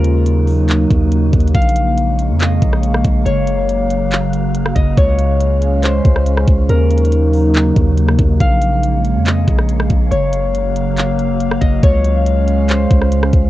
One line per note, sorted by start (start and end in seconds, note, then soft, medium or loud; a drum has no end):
0.00 0.86 D#2 loud
0.00 1.51 C#3 medium
0.00 1.53 F#3 medium
0.00 1.53 A#3 medium
0.00 1.53 C#4 medium
0.00 1.53 D#4 medium
0.00 1.53 F#4 medium
0.00 1.96 A#4 medium
0.00 0.95 C5 medium
0.00 1.53 D#5 medium
0.04 closed hi-hat medium
0.26 closed hi-hat medium
0.48 open hi-hat medium
0.69 clap loud
0.69 closed hi-hat medium
0.91 1.32 D#2 loud
0.91 kick medium
0.91 closed hi-hat medium
1.12 closed hi-hat medium
1.33 1.54 D#2 loud
1.33 kick medium
1.33 closed hi-hat soft
1.40 closed hi-hat medium
1.48 closed hi-hat medium
1.54 2.31 A#1 loud
1.54 11.79 C#3 medium
1.54 3.24 G#3 medium
1.54 4.94 A#3 medium
1.54 3.24 G#4 medium
1.54 3.24 C#5 medium
1.54 3.21 F5 loud
1.54 6.65 F5 medium
1.54 kick loud
1.54 closed hi-hat medium
1.62 closed hi-hat medium
1.69 closed hi-hat medium
1.76 closed hi-hat medium
1.98 closed hi-hat medium
2.19 closed hi-hat medium
2.30 2.60 F2 loud
2.40 4.19 D#5 medium
2.40 clap loud
2.40 closed hi-hat medium
2.62 3.03 A#1 loud
2.62 kick medium
2.62 closed hi-hat medium
2.73 cross-stick medium
2.83 closed hi-hat medium
2.94 cross-stick loud
3.04 3.25 A#1 loud
3.04 kick medium
3.04 closed hi-hat medium
3.25 4.72 F#1 loud
3.25 4.96 F#3 medium
3.25 4.96 F#4 medium
3.25 4.97 C#5 loud
3.25 6.66 F5 medium
3.25 closed hi-hat medium
3.47 closed hi-hat medium
3.69 closed hi-hat medium
3.90 closed hi-hat medium
4.12 clap loud
4.12 closed hi-hat medium
4.33 closed hi-hat medium
4.55 closed hi-hat medium
4.66 cross-stick loud
4.75 4.97 F#1 loud
4.75 6.54 D#5 medium
4.75 kick medium
4.75 closed hi-hat medium
4.97 6.01 C#2 loud
4.97 6.67 G#3 medium
4.97 6.67 C#4 medium
4.97 8.37 C#4 medium
4.97 5.89 C#5 loud
4.97 6.67 C6 medium
4.97 kick loud
4.97 closed hi-hat medium
5.19 closed hi-hat medium
5.41 closed hi-hat medium
5.62 closed hi-hat medium
5.83 7.81 C5 medium
5.83 clap loud
5.83 closed hi-hat medium
6.05 6.46 C#2 loud
6.05 kick medium
6.05 closed hi-hat medium
6.16 cross-stick medium
6.26 closed hi-hat medium
6.37 cross-stick loud
6.47 6.68 C#2 loud
6.47 kick loud
6.47 closed hi-hat medium
6.69 7.72 D#2 loud
6.69 8.39 F#3 medium
6.69 10.08 A#3 medium
6.69 8.39 D#4 medium
6.69 8.39 F#4 medium
6.69 8.81 A#4 loud
6.69 8.39 D#5 medium
6.69 closed hi-hat medium
6.90 closed hi-hat medium
6.98 closed hi-hat medium
7.05 closed hi-hat medium
7.12 closed hi-hat medium
7.33 open hi-hat medium
7.54 clap loud
7.54 closed hi-hat medium
7.76 8.17 D#2 loud
7.76 kick medium
7.76 closed hi-hat medium
7.98 closed hi-hat medium
8.09 cross-stick loud
8.19 8.39 D#2 loud
8.19 kick medium
8.19 closed hi-hat medium
8.40 9.17 A#1 loud
8.40 10.10 G#3 medium
8.40 11.80 A#3 medium
8.40 10.10 G#4 medium
8.40 10.10 C#5 medium
8.40 10.07 F5 loud
8.40 13.50 F5 medium
8.40 kick loud
8.40 closed hi-hat medium
8.62 closed hi-hat medium
8.83 closed hi-hat medium
9.05 closed hi-hat medium
9.15 9.46 F2 loud
9.26 11.04 D#5 medium
9.26 clap loud
9.26 closed hi-hat medium
9.48 9.89 A#1 loud
9.48 kick medium
9.48 closed hi-hat medium
9.59 cross-stick medium
9.69 closed hi-hat medium
9.80 cross-stick loud
9.90 10.11 A#1 loud
9.90 kick medium
9.90 closed hi-hat medium
10.11 11.58 F#1 loud
10.11 11.82 F#3 medium
10.11 11.82 A#3 medium
10.11 11.82 F#4 medium
10.11 11.83 C#5 loud
10.11 13.50 F5 medium
10.11 closed hi-hat medium
10.33 closed hi-hat medium
10.55 closed hi-hat medium
10.76 closed hi-hat medium
10.97 clap loud
10.97 closed hi-hat medium
11.19 closed hi-hat medium
11.40 closed hi-hat medium
11.51 cross-stick loud
11.61 11.82 F#1 loud
11.61 13.39 D#5 medium
11.61 kick medium
11.61 closed hi-hat medium
11.83 12.86 C#2 loud
11.83 13.50 C#3 medium
11.83 13.50 G#3 medium
11.83 13.50 C#4 medium
11.83 12.75 C#5 loud
11.83 13.50 C6 medium
11.83 kick loud
11.83 closed hi-hat medium
12.04 closed hi-hat medium
12.26 closed hi-hat medium
12.48 closed hi-hat medium
12.69 13.50 C5 medium
12.69 clap loud
12.69 closed hi-hat medium
12.91 13.32 C#2 loud
12.91 kick medium
12.91 closed hi-hat medium
13.01 cross-stick medium
13.12 closed hi-hat medium
13.23 cross-stick loud
13.33 13.50 C#2 loud
13.33 kick medium
13.33 closed hi-hat medium